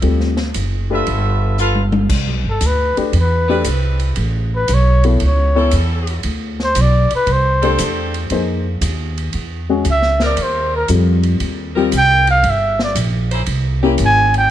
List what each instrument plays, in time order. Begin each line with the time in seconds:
0.02 upright bass D2, grand piano G3 C4 F4 A4, ride
0.20 snare
0.37 snare
0.54 upright bass F#1, hi-hat pedal, ride
0.90 grand piano A3 D4 G4 B4, trumpet section F4 A4 B4 E5
1.07 upright bass G1, ride
1.58 trumpet section F4 A4 B4 F5, hi-hat pedal
1.75 high tom
1.92 high tom
2.10 upright bass C2, kick, crash
2.27 upright bass B1
2.44 upright bass G1
2.49 trumpet A4
2.61 upright bass D2, hi-hat pedal, ride
2.67 trumpet B4
2.97 grand piano A3 D4 G4 B4, trumpet G4, muted upright bass stroke, ride
3.13 upright bass E2, ride
3.20 trumpet B4
3.48 saxophone section G3 C4 E4 B4, grand piano A3 D4 G4 A4
3.64 upright bass C2, hi-hat pedal, ride
4.00 ride
4.16 upright bass A1, ride
4.56 trumpet B4
4.68 upright bass B1, hi-hat pedal, ride
4.74 trumpet C#5
5.04 grand piano B3 E4 A4 C#5, trumpet A4, ride
5.20 upright bass C#2, ride
5.25 trumpet C#5
5.55 saxophone section G3 C#4 E4 A4, grand piano B3 E4 A4 C#5
5.71 upright bass E2, hi-hat pedal, ride
6.07 ride
6.23 upright bass D2, ride
6.60 snare
6.64 trumpet C5
6.75 upright bass B1, hi-hat pedal, ride
6.81 trumpet D5
7.10 muted upright bass stroke, ride
7.15 trumpet B4
7.27 upright bass C2, ride
7.32 trumpet C5
7.62 grand piano A3 D4 G4 C5, saxophone section C4 D4 F4 A4, ride
7.78 upright bass E2, hi-hat pedal, ride
8.14 ride
8.30 upright bass F2, grand piano A#3 D#4 G#4 C5, ride
8.81 upright bass D#2, hi-hat pedal, ride
9.18 ride
9.33 upright bass E2, ride
9.69 grand piano G#3 C#4 F#4 G#4
9.85 upright bass C#2, hi-hat pedal, ride
9.91 trumpet E5
10.02 snare
10.20 saxophone section G3 C4 D#4 A#4, snare
10.25 trumpet D5
10.37 upright bass D#2, ride
10.43 trumpet C5
10.76 trumpet A#4
10.88 upright bass F2, grand piano G3 C4 F4 A4, hi-hat pedal, ride
11.23 ride
11.40 upright bass D#2, ride
11.75 saxophone section G3 C4 D#4 A#4, grand piano G3 C4 F4 G4
11.92 upright bass C2, hi-hat pedal, ride
11.98 trumpet G5
12.27 trumpet F5, ride
12.43 upright bass G1, ride
12.50 trumpet E5
12.79 trumpet D5, snare
12.95 upright bass A#1, hi-hat pedal, ride
13.31 saxophone section A#3 C#4 E4 C5, ride
13.46 upright bass C2, ride
13.83 grand piano A#3 C#4 E4 G4, saxophone section A#3 C#4 E4 G4
13.98 upright bass G#1, hi-hat pedal, ride
14.05 trumpet G#5
14.34 ride
14.38 trumpet G5